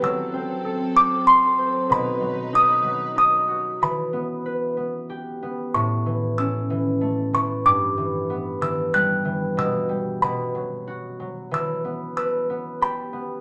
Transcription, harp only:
X:1
M:3/4
L:1/8
Q:1/4=94
K:Em
V:1 name="Harp"
F, C A C A c | B,, F, ^D F, D F | E, B, B B, G B, | A,, E, ^C E, A, E, |
G,, E, B, E, G, E, | B,, G, B,, F, F F, | E, B, B B, G B, |]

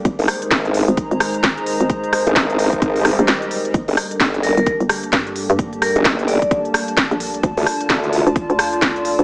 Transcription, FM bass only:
X:1
M:4/4
L:1/16
Q:"Swing 16ths" 1/4=130
K:Gm
V:1 name="FM bass" clef=bass
_A,,, z6 A,,,2 A,,,3 A,,,3 A,,,- | _A,,,3 z8 B,,, A,,,4 | G,,, z6 G,,,2 G,,,3 G,,3 G,,- | G,,3 z8 z2 B,,,3 |
D,, z6 D,,2 D,,3 D,,3 D,, |]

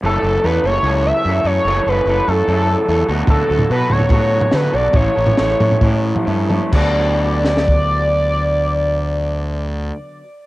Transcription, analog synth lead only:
X:1
M:4/4
L:1/8
Q:1/4=141
K:D
V:1 name="Analog synth lead"
A2 B c2 e2 c- | c B2 A4 z | A2 B c3 B d | c6 z2 |
d8- | d8 |]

